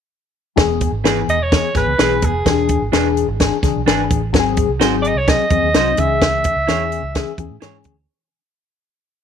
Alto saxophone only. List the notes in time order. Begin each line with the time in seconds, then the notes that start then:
1.30 D#5
1.43 C#5
1.77 B4
2.24 G#4
5.02 D5
5.07 D#5
5.18 C#5
5.29 D#5
6.00 E5